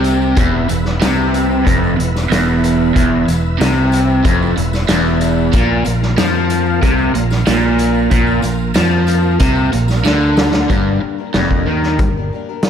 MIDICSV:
0, 0, Header, 1, 8, 480
1, 0, Start_track
1, 0, Tempo, 645856
1, 279, Time_signature, 4, 2, 24, 8
1, 9438, End_track
2, 0, Start_track
2, 0, Title_t, "Tonewheel organ"
2, 0, Program_c, 0, 16
2, 0, Note_on_c, 0, 67, 72
2, 0, Note_on_c, 0, 70, 71
2, 0, Note_on_c, 0, 74, 66
2, 265, Note_off_c, 0, 67, 0
2, 266, Note_off_c, 0, 70, 0
2, 266, Note_off_c, 0, 74, 0
2, 285, Note_on_c, 0, 59, 61
2, 287, Note_on_c, 0, 64, 68
2, 287, Note_on_c, 0, 71, 66
2, 288, Note_on_c, 0, 76, 66
2, 2183, Note_off_c, 0, 59, 0
2, 2184, Note_off_c, 0, 64, 0
2, 2184, Note_off_c, 0, 71, 0
2, 2185, Note_off_c, 0, 76, 0
2, 2195, Note_on_c, 0, 64, 69
2, 2197, Note_on_c, 0, 71, 66
2, 2201, Note_on_c, 0, 76, 65
2, 4098, Note_off_c, 0, 64, 0
2, 4102, Note_off_c, 0, 71, 0
2, 4102, Note_off_c, 0, 76, 0
2, 4103, Note_on_c, 0, 58, 67
2, 4103, Note_on_c, 0, 70, 64
2, 4105, Note_on_c, 0, 65, 69
2, 4108, Note_on_c, 0, 77, 69
2, 6012, Note_off_c, 0, 58, 0
2, 6012, Note_off_c, 0, 70, 0
2, 6013, Note_off_c, 0, 65, 0
2, 6015, Note_off_c, 0, 77, 0
2, 6034, Note_on_c, 0, 58, 70
2, 6035, Note_on_c, 0, 65, 65
2, 6035, Note_on_c, 0, 70, 70
2, 7938, Note_off_c, 0, 58, 0
2, 7938, Note_off_c, 0, 70, 0
2, 7939, Note_off_c, 0, 65, 0
2, 9438, End_track
3, 0, Start_track
3, 0, Title_t, "Twelve-string acoustic guitar"
3, 0, Program_c, 1, 25
3, 7942, Note_on_c, 1, 50, 73
3, 7943, Note_on_c, 1, 43, 71
3, 7949, Note_on_c, 1, 58, 72
3, 7950, Note_on_c, 1, 55, 80
3, 7951, Note_on_c, 1, 62, 79
3, 7956, Note_on_c, 1, 70, 85
3, 8303, Note_off_c, 1, 70, 0
3, 8311, Note_off_c, 1, 43, 0
3, 8311, Note_off_c, 1, 50, 0
3, 8311, Note_on_c, 1, 70, 50
3, 8314, Note_off_c, 1, 58, 0
3, 8314, Note_off_c, 1, 62, 0
3, 8315, Note_off_c, 1, 55, 0
3, 8322, Note_on_c, 1, 62, 50
3, 8327, Note_on_c, 1, 58, 45
3, 8329, Note_on_c, 1, 55, 40
3, 8436, Note_off_c, 1, 70, 0
3, 8441, Note_off_c, 1, 62, 0
3, 8444, Note_off_c, 1, 58, 0
3, 8445, Note_off_c, 1, 55, 0
3, 8447, Note_on_c, 1, 43, 66
3, 8450, Note_on_c, 1, 50, 72
3, 8452, Note_on_c, 1, 55, 76
3, 8452, Note_on_c, 1, 58, 73
3, 8458, Note_on_c, 1, 62, 85
3, 8462, Note_on_c, 1, 70, 86
3, 8672, Note_off_c, 1, 55, 0
3, 8680, Note_on_c, 1, 55, 57
3, 8682, Note_off_c, 1, 62, 0
3, 8683, Note_off_c, 1, 43, 0
3, 8683, Note_off_c, 1, 58, 0
3, 8685, Note_off_c, 1, 50, 0
3, 8687, Note_off_c, 1, 70, 0
3, 8691, Note_on_c, 1, 62, 62
3, 8692, Note_on_c, 1, 58, 59
3, 8696, Note_on_c, 1, 70, 62
3, 9037, Note_off_c, 1, 70, 0
3, 9040, Note_off_c, 1, 55, 0
3, 9042, Note_off_c, 1, 62, 0
3, 9046, Note_off_c, 1, 58, 0
3, 9046, Note_on_c, 1, 70, 53
3, 9051, Note_on_c, 1, 62, 51
3, 9059, Note_on_c, 1, 58, 44
3, 9062, Note_on_c, 1, 55, 42
3, 9152, Note_off_c, 1, 55, 0
3, 9161, Note_on_c, 1, 55, 60
3, 9163, Note_off_c, 1, 58, 0
3, 9163, Note_off_c, 1, 70, 0
3, 9165, Note_off_c, 1, 62, 0
3, 9172, Note_on_c, 1, 58, 54
3, 9177, Note_on_c, 1, 62, 64
3, 9182, Note_on_c, 1, 70, 62
3, 9273, Note_off_c, 1, 70, 0
3, 9277, Note_off_c, 1, 62, 0
3, 9280, Note_off_c, 1, 55, 0
3, 9281, Note_off_c, 1, 58, 0
3, 9282, Note_on_c, 1, 70, 47
3, 9286, Note_on_c, 1, 62, 47
3, 9290, Note_on_c, 1, 58, 43
3, 9296, Note_on_c, 1, 55, 44
3, 9397, Note_off_c, 1, 55, 0
3, 9399, Note_off_c, 1, 70, 0
3, 9400, Note_off_c, 1, 58, 0
3, 9400, Note_off_c, 1, 62, 0
3, 9401, Note_on_c, 1, 43, 74
3, 9402, Note_on_c, 1, 50, 68
3, 9406, Note_on_c, 1, 55, 82
3, 9408, Note_on_c, 1, 58, 69
3, 9408, Note_on_c, 1, 70, 80
3, 9409, Note_on_c, 1, 62, 73
3, 9438, Note_off_c, 1, 43, 0
3, 9438, Note_off_c, 1, 50, 0
3, 9438, Note_off_c, 1, 55, 0
3, 9438, Note_off_c, 1, 58, 0
3, 9438, Note_off_c, 1, 62, 0
3, 9438, Note_off_c, 1, 70, 0
3, 9438, End_track
4, 0, Start_track
4, 0, Title_t, "Overdriven electric guitar"
4, 0, Program_c, 2, 29
4, 0, Note_on_c, 2, 48, 100
4, 271, Note_off_c, 2, 48, 0
4, 276, Note_on_c, 2, 40, 97
4, 511, Note_off_c, 2, 40, 0
4, 520, Note_on_c, 2, 40, 66
4, 712, Note_off_c, 2, 40, 0
4, 763, Note_on_c, 2, 48, 96
4, 1234, Note_off_c, 2, 48, 0
4, 1243, Note_on_c, 2, 41, 102
4, 1474, Note_off_c, 2, 41, 0
4, 1479, Note_on_c, 2, 40, 70
4, 1671, Note_off_c, 2, 40, 0
4, 1724, Note_on_c, 2, 40, 97
4, 2193, Note_off_c, 2, 40, 0
4, 2202, Note_on_c, 2, 40, 108
4, 2433, Note_off_c, 2, 40, 0
4, 2442, Note_on_c, 2, 40, 69
4, 2633, Note_off_c, 2, 40, 0
4, 2679, Note_on_c, 2, 48, 98
4, 3152, Note_off_c, 2, 48, 0
4, 3164, Note_on_c, 2, 41, 104
4, 3395, Note_off_c, 2, 41, 0
4, 3401, Note_on_c, 2, 40, 68
4, 3593, Note_off_c, 2, 40, 0
4, 3644, Note_on_c, 2, 40, 99
4, 4115, Note_off_c, 2, 40, 0
4, 4121, Note_on_c, 2, 46, 105
4, 4341, Note_off_c, 2, 46, 0
4, 4350, Note_on_c, 2, 46, 77
4, 4547, Note_off_c, 2, 46, 0
4, 4594, Note_on_c, 2, 53, 100
4, 5069, Note_off_c, 2, 53, 0
4, 5072, Note_on_c, 2, 48, 92
4, 5309, Note_off_c, 2, 48, 0
4, 5314, Note_on_c, 2, 46, 71
4, 5509, Note_off_c, 2, 46, 0
4, 5551, Note_on_c, 2, 46, 99
4, 6022, Note_off_c, 2, 46, 0
4, 6031, Note_on_c, 2, 46, 104
4, 6254, Note_off_c, 2, 46, 0
4, 6263, Note_on_c, 2, 46, 73
4, 6463, Note_off_c, 2, 46, 0
4, 6509, Note_on_c, 2, 53, 100
4, 6987, Note_off_c, 2, 53, 0
4, 6990, Note_on_c, 2, 48, 100
4, 7224, Note_off_c, 2, 48, 0
4, 7227, Note_on_c, 2, 46, 63
4, 7426, Note_off_c, 2, 46, 0
4, 7466, Note_on_c, 2, 50, 104
4, 7946, Note_off_c, 2, 50, 0
4, 7951, Note_on_c, 2, 43, 90
4, 8179, Note_off_c, 2, 43, 0
4, 8437, Note_on_c, 2, 41, 88
4, 8671, Note_off_c, 2, 41, 0
4, 8675, Note_on_c, 2, 51, 89
4, 8910, Note_off_c, 2, 51, 0
4, 8919, Note_on_c, 2, 43, 64
4, 9111, Note_off_c, 2, 43, 0
4, 9438, End_track
5, 0, Start_track
5, 0, Title_t, "Fingered electric bass"
5, 0, Program_c, 3, 33
5, 0, Note_on_c, 3, 36, 88
5, 250, Note_off_c, 3, 36, 0
5, 276, Note_on_c, 3, 28, 89
5, 501, Note_off_c, 3, 28, 0
5, 526, Note_on_c, 3, 28, 82
5, 746, Note_off_c, 3, 28, 0
5, 764, Note_on_c, 3, 36, 75
5, 1212, Note_off_c, 3, 36, 0
5, 1241, Note_on_c, 3, 29, 83
5, 1463, Note_off_c, 3, 29, 0
5, 1485, Note_on_c, 3, 28, 81
5, 1706, Note_off_c, 3, 28, 0
5, 1716, Note_on_c, 3, 28, 87
5, 2168, Note_off_c, 3, 28, 0
5, 2199, Note_on_c, 3, 28, 89
5, 2423, Note_off_c, 3, 28, 0
5, 2440, Note_on_c, 3, 28, 81
5, 2663, Note_off_c, 3, 28, 0
5, 2672, Note_on_c, 3, 36, 80
5, 3126, Note_off_c, 3, 36, 0
5, 3159, Note_on_c, 3, 29, 90
5, 3383, Note_off_c, 3, 29, 0
5, 3401, Note_on_c, 3, 28, 76
5, 3624, Note_off_c, 3, 28, 0
5, 3634, Note_on_c, 3, 28, 84
5, 4087, Note_off_c, 3, 28, 0
5, 4115, Note_on_c, 3, 34, 90
5, 4340, Note_off_c, 3, 34, 0
5, 4360, Note_on_c, 3, 34, 84
5, 4583, Note_off_c, 3, 34, 0
5, 4598, Note_on_c, 3, 41, 86
5, 5049, Note_off_c, 3, 41, 0
5, 5079, Note_on_c, 3, 36, 92
5, 5303, Note_off_c, 3, 36, 0
5, 5312, Note_on_c, 3, 34, 72
5, 5539, Note_off_c, 3, 34, 0
5, 5558, Note_on_c, 3, 34, 85
5, 6009, Note_off_c, 3, 34, 0
5, 6034, Note_on_c, 3, 34, 94
5, 6260, Note_off_c, 3, 34, 0
5, 6271, Note_on_c, 3, 34, 78
5, 6498, Note_off_c, 3, 34, 0
5, 6513, Note_on_c, 3, 41, 80
5, 6967, Note_off_c, 3, 41, 0
5, 6989, Note_on_c, 3, 36, 93
5, 7217, Note_off_c, 3, 36, 0
5, 7238, Note_on_c, 3, 34, 80
5, 7462, Note_off_c, 3, 34, 0
5, 7476, Note_on_c, 3, 38, 84
5, 7928, Note_off_c, 3, 38, 0
5, 7954, Note_on_c, 3, 31, 77
5, 8180, Note_off_c, 3, 31, 0
5, 8438, Note_on_c, 3, 29, 77
5, 8662, Note_off_c, 3, 29, 0
5, 8676, Note_on_c, 3, 39, 84
5, 8901, Note_off_c, 3, 39, 0
5, 8917, Note_on_c, 3, 31, 69
5, 9141, Note_off_c, 3, 31, 0
5, 9438, End_track
6, 0, Start_track
6, 0, Title_t, "Muted fingered electric bass strokes"
6, 8199, Note_on_c, 9, 29, 36
6, 8273, Note_off_c, 9, 29, 0
6, 9438, End_track
7, 0, Start_track
7, 0, Title_t, "Muted overdriven electric guitar strokes"
7, 8188, Note_on_c, 9, 29, 55
7, 8262, Note_off_c, 9, 29, 0
7, 9438, End_track
8, 0, Start_track
8, 0, Title_t, "Drums"
8, 31, Note_on_c, 9, 42, 60
8, 41, Note_on_c, 9, 54, 79
8, 105, Note_off_c, 9, 42, 0
8, 115, Note_off_c, 9, 54, 0
8, 162, Note_on_c, 9, 54, 31
8, 236, Note_off_c, 9, 54, 0
8, 272, Note_on_c, 9, 42, 82
8, 276, Note_on_c, 9, 36, 92
8, 276, Note_on_c, 9, 54, 31
8, 346, Note_off_c, 9, 42, 0
8, 350, Note_off_c, 9, 54, 0
8, 351, Note_off_c, 9, 36, 0
8, 514, Note_on_c, 9, 42, 62
8, 515, Note_on_c, 9, 54, 82
8, 588, Note_off_c, 9, 42, 0
8, 589, Note_off_c, 9, 54, 0
8, 634, Note_on_c, 9, 38, 30
8, 708, Note_off_c, 9, 38, 0
8, 756, Note_on_c, 9, 42, 82
8, 756, Note_on_c, 9, 54, 87
8, 757, Note_on_c, 9, 38, 106
8, 830, Note_off_c, 9, 42, 0
8, 830, Note_off_c, 9, 54, 0
8, 832, Note_off_c, 9, 38, 0
8, 997, Note_on_c, 9, 42, 72
8, 1000, Note_on_c, 9, 54, 75
8, 1072, Note_off_c, 9, 42, 0
8, 1075, Note_off_c, 9, 54, 0
8, 1122, Note_on_c, 9, 54, 29
8, 1196, Note_off_c, 9, 54, 0
8, 1239, Note_on_c, 9, 36, 96
8, 1241, Note_on_c, 9, 42, 88
8, 1247, Note_on_c, 9, 54, 28
8, 1313, Note_off_c, 9, 36, 0
8, 1315, Note_off_c, 9, 42, 0
8, 1321, Note_off_c, 9, 54, 0
8, 1367, Note_on_c, 9, 54, 26
8, 1441, Note_off_c, 9, 54, 0
8, 1486, Note_on_c, 9, 42, 70
8, 1560, Note_off_c, 9, 42, 0
8, 1604, Note_on_c, 9, 38, 30
8, 1608, Note_on_c, 9, 54, 68
8, 1678, Note_off_c, 9, 38, 0
8, 1683, Note_off_c, 9, 54, 0
8, 1723, Note_on_c, 9, 42, 91
8, 1725, Note_on_c, 9, 38, 105
8, 1726, Note_on_c, 9, 54, 87
8, 1797, Note_off_c, 9, 42, 0
8, 1799, Note_off_c, 9, 38, 0
8, 1801, Note_off_c, 9, 54, 0
8, 1854, Note_on_c, 9, 54, 27
8, 1929, Note_off_c, 9, 54, 0
8, 1961, Note_on_c, 9, 42, 75
8, 1970, Note_on_c, 9, 54, 74
8, 2035, Note_off_c, 9, 42, 0
8, 2044, Note_off_c, 9, 54, 0
8, 2091, Note_on_c, 9, 54, 26
8, 2166, Note_off_c, 9, 54, 0
8, 2200, Note_on_c, 9, 36, 92
8, 2201, Note_on_c, 9, 42, 87
8, 2213, Note_on_c, 9, 54, 27
8, 2274, Note_off_c, 9, 36, 0
8, 2275, Note_off_c, 9, 42, 0
8, 2287, Note_off_c, 9, 54, 0
8, 2440, Note_on_c, 9, 42, 67
8, 2451, Note_on_c, 9, 54, 67
8, 2514, Note_off_c, 9, 42, 0
8, 2525, Note_off_c, 9, 54, 0
8, 2681, Note_on_c, 9, 54, 86
8, 2685, Note_on_c, 9, 42, 93
8, 2687, Note_on_c, 9, 38, 104
8, 2755, Note_off_c, 9, 54, 0
8, 2759, Note_off_c, 9, 42, 0
8, 2761, Note_off_c, 9, 38, 0
8, 2913, Note_on_c, 9, 54, 70
8, 2923, Note_on_c, 9, 42, 75
8, 2987, Note_off_c, 9, 54, 0
8, 2998, Note_off_c, 9, 42, 0
8, 3045, Note_on_c, 9, 54, 25
8, 3119, Note_off_c, 9, 54, 0
8, 3158, Note_on_c, 9, 36, 102
8, 3158, Note_on_c, 9, 42, 89
8, 3162, Note_on_c, 9, 54, 25
8, 3232, Note_off_c, 9, 42, 0
8, 3233, Note_off_c, 9, 36, 0
8, 3237, Note_off_c, 9, 54, 0
8, 3286, Note_on_c, 9, 54, 24
8, 3360, Note_off_c, 9, 54, 0
8, 3400, Note_on_c, 9, 42, 65
8, 3475, Note_off_c, 9, 42, 0
8, 3516, Note_on_c, 9, 54, 64
8, 3520, Note_on_c, 9, 38, 33
8, 3590, Note_off_c, 9, 54, 0
8, 3595, Note_off_c, 9, 38, 0
8, 3631, Note_on_c, 9, 42, 88
8, 3633, Note_on_c, 9, 38, 109
8, 3634, Note_on_c, 9, 54, 82
8, 3705, Note_off_c, 9, 42, 0
8, 3707, Note_off_c, 9, 38, 0
8, 3708, Note_off_c, 9, 54, 0
8, 3754, Note_on_c, 9, 54, 26
8, 3828, Note_off_c, 9, 54, 0
8, 3871, Note_on_c, 9, 42, 61
8, 3872, Note_on_c, 9, 54, 70
8, 3945, Note_off_c, 9, 42, 0
8, 3946, Note_off_c, 9, 54, 0
8, 3997, Note_on_c, 9, 54, 25
8, 4072, Note_off_c, 9, 54, 0
8, 4111, Note_on_c, 9, 42, 85
8, 4115, Note_on_c, 9, 36, 93
8, 4185, Note_off_c, 9, 42, 0
8, 4189, Note_off_c, 9, 36, 0
8, 4345, Note_on_c, 9, 54, 64
8, 4353, Note_on_c, 9, 42, 65
8, 4420, Note_off_c, 9, 54, 0
8, 4428, Note_off_c, 9, 42, 0
8, 4477, Note_on_c, 9, 38, 29
8, 4552, Note_off_c, 9, 38, 0
8, 4591, Note_on_c, 9, 42, 82
8, 4591, Note_on_c, 9, 54, 76
8, 4593, Note_on_c, 9, 38, 101
8, 4666, Note_off_c, 9, 42, 0
8, 4666, Note_off_c, 9, 54, 0
8, 4667, Note_off_c, 9, 38, 0
8, 4830, Note_on_c, 9, 42, 69
8, 4833, Note_on_c, 9, 54, 66
8, 4904, Note_off_c, 9, 42, 0
8, 4907, Note_off_c, 9, 54, 0
8, 4950, Note_on_c, 9, 54, 27
8, 5024, Note_off_c, 9, 54, 0
8, 5074, Note_on_c, 9, 36, 105
8, 5075, Note_on_c, 9, 42, 88
8, 5076, Note_on_c, 9, 54, 23
8, 5149, Note_off_c, 9, 36, 0
8, 5149, Note_off_c, 9, 42, 0
8, 5150, Note_off_c, 9, 54, 0
8, 5192, Note_on_c, 9, 54, 22
8, 5267, Note_off_c, 9, 54, 0
8, 5314, Note_on_c, 9, 42, 64
8, 5388, Note_off_c, 9, 42, 0
8, 5429, Note_on_c, 9, 54, 57
8, 5434, Note_on_c, 9, 38, 29
8, 5503, Note_off_c, 9, 54, 0
8, 5508, Note_off_c, 9, 38, 0
8, 5547, Note_on_c, 9, 54, 76
8, 5550, Note_on_c, 9, 42, 96
8, 5551, Note_on_c, 9, 38, 102
8, 5622, Note_off_c, 9, 54, 0
8, 5624, Note_off_c, 9, 42, 0
8, 5626, Note_off_c, 9, 38, 0
8, 5666, Note_on_c, 9, 54, 24
8, 5740, Note_off_c, 9, 54, 0
8, 5786, Note_on_c, 9, 54, 62
8, 5791, Note_on_c, 9, 42, 68
8, 5860, Note_off_c, 9, 54, 0
8, 5866, Note_off_c, 9, 42, 0
8, 5904, Note_on_c, 9, 54, 25
8, 5979, Note_off_c, 9, 54, 0
8, 6029, Note_on_c, 9, 42, 92
8, 6029, Note_on_c, 9, 54, 22
8, 6032, Note_on_c, 9, 36, 93
8, 6103, Note_off_c, 9, 42, 0
8, 6103, Note_off_c, 9, 54, 0
8, 6106, Note_off_c, 9, 36, 0
8, 6144, Note_on_c, 9, 54, 24
8, 6219, Note_off_c, 9, 54, 0
8, 6259, Note_on_c, 9, 54, 63
8, 6270, Note_on_c, 9, 42, 69
8, 6334, Note_off_c, 9, 54, 0
8, 6344, Note_off_c, 9, 42, 0
8, 6380, Note_on_c, 9, 54, 24
8, 6454, Note_off_c, 9, 54, 0
8, 6496, Note_on_c, 9, 54, 79
8, 6506, Note_on_c, 9, 42, 94
8, 6508, Note_on_c, 9, 38, 99
8, 6570, Note_off_c, 9, 54, 0
8, 6581, Note_off_c, 9, 42, 0
8, 6582, Note_off_c, 9, 38, 0
8, 6622, Note_on_c, 9, 54, 23
8, 6697, Note_off_c, 9, 54, 0
8, 6739, Note_on_c, 9, 54, 68
8, 6748, Note_on_c, 9, 42, 74
8, 6814, Note_off_c, 9, 54, 0
8, 6822, Note_off_c, 9, 42, 0
8, 6859, Note_on_c, 9, 54, 24
8, 6933, Note_off_c, 9, 54, 0
8, 6984, Note_on_c, 9, 42, 99
8, 6984, Note_on_c, 9, 54, 24
8, 6991, Note_on_c, 9, 36, 105
8, 7058, Note_off_c, 9, 42, 0
8, 7058, Note_off_c, 9, 54, 0
8, 7065, Note_off_c, 9, 36, 0
8, 7099, Note_on_c, 9, 54, 24
8, 7173, Note_off_c, 9, 54, 0
8, 7226, Note_on_c, 9, 54, 25
8, 7230, Note_on_c, 9, 42, 70
8, 7301, Note_off_c, 9, 54, 0
8, 7304, Note_off_c, 9, 42, 0
8, 7343, Note_on_c, 9, 54, 62
8, 7354, Note_on_c, 9, 38, 32
8, 7417, Note_off_c, 9, 54, 0
8, 7429, Note_off_c, 9, 38, 0
8, 7467, Note_on_c, 9, 54, 84
8, 7476, Note_on_c, 9, 38, 65
8, 7541, Note_off_c, 9, 54, 0
8, 7550, Note_off_c, 9, 38, 0
8, 7585, Note_on_c, 9, 54, 25
8, 7660, Note_off_c, 9, 54, 0
8, 7705, Note_on_c, 9, 54, 70
8, 7711, Note_on_c, 9, 38, 88
8, 7780, Note_off_c, 9, 54, 0
8, 7785, Note_off_c, 9, 38, 0
8, 7830, Note_on_c, 9, 54, 24
8, 7831, Note_on_c, 9, 38, 85
8, 7905, Note_off_c, 9, 38, 0
8, 7905, Note_off_c, 9, 54, 0
8, 7951, Note_on_c, 9, 36, 91
8, 7953, Note_on_c, 9, 42, 46
8, 8026, Note_off_c, 9, 36, 0
8, 8027, Note_off_c, 9, 42, 0
8, 8428, Note_on_c, 9, 42, 49
8, 8429, Note_on_c, 9, 38, 93
8, 8502, Note_off_c, 9, 42, 0
8, 8504, Note_off_c, 9, 38, 0
8, 8552, Note_on_c, 9, 36, 68
8, 8626, Note_off_c, 9, 36, 0
8, 8792, Note_on_c, 9, 38, 30
8, 8867, Note_off_c, 9, 38, 0
8, 8911, Note_on_c, 9, 42, 55
8, 8913, Note_on_c, 9, 36, 105
8, 8985, Note_off_c, 9, 42, 0
8, 8987, Note_off_c, 9, 36, 0
8, 9385, Note_on_c, 9, 42, 57
8, 9386, Note_on_c, 9, 38, 101
8, 9438, Note_off_c, 9, 38, 0
8, 9438, Note_off_c, 9, 42, 0
8, 9438, End_track
0, 0, End_of_file